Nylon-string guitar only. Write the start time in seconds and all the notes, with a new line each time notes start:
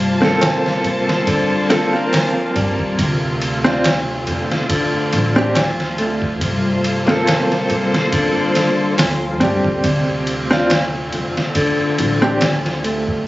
Already playing: C3
1.27 D3
2.13 F3
2.56 G3
2.98 C3
4.70 D3
5.56 F3
5.98 A3
6.41 C3
8.12 D3
8.98 F3
9.41 G3
9.84 C3
11.55 D3
12.41 F3
12.84 A3